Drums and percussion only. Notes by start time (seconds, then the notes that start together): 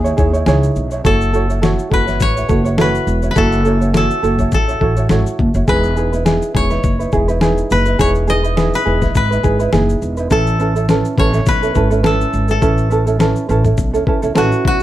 0.05 shaker
0.17 kick, shaker
0.34 shaker
0.46 snare, shaker
0.63 shaker
0.76 shaker
0.91 shaker
1.05 kick, shaker
1.21 shaker
1.34 shaker
1.50 shaker
1.63 snare, shaker
1.79 shaker
1.92 kick
2.07 snare, shaker
2.20 kick, shaker
2.37 shaker
2.49 kick, shaker
2.65 shaker
2.78 snare, shaker
2.95 shaker
3.07 shaker
3.22 shaker
3.36 kick, shaker
3.52 shaker
3.65 shaker
3.81 shaker
3.94 snare, shaker
4.10 shaker
4.24 shaker
4.39 kick, shaker
4.51 kick, shaker
4.69 shaker
4.81 kick
4.96 shaker
5.09 snare, shaker
5.26 shaker
5.39 kick
5.54 shaker
5.68 kick, shaker
5.83 shaker
5.96 shaker
6.13 shaker
6.26 snare, shaker
6.42 shaker
6.55 kick
6.70 snare, shaker
6.83 kick, shaker
7.00 shaker
7.12 kick, shaker
7.28 shaker
7.41 snare, shaker
7.57 shaker
7.70 shaker
7.85 shaker
7.99 kick, shaker
8.15 shaker
8.28 shaker
8.44 shaker
8.57 snare, shaker
8.73 shaker
9.02 kick, snare, shaker
9.15 kick, shaker
9.32 shaker
9.44 kick, shaker
9.60 shaker
9.73 snare, shaker
9.89 shaker
10.02 shaker
10.17 shaker
10.30 kick, shaker
10.47 shaker
10.59 shaker
10.76 shaker
10.89 snare, shaker
11.05 shaker
11.18 kick
11.33 snare, shaker
11.46 kick, shaker
11.63 shaker
11.75 kick, shaker
11.91 shaker
12.04 snare, shaker
12.21 shaker
12.33 shaker
12.48 shaker
12.62 kick, shaker
12.78 shaker
12.91 shaker
13.07 shaker
13.20 snare, shaker
13.36 shaker
13.49 shaker
13.64 kick, shaker
13.77 kick, shaker
13.94 shaker
14.07 kick
14.22 shaker
14.35 snare, shaker
14.52 shaker
14.65 kick
14.80 shaker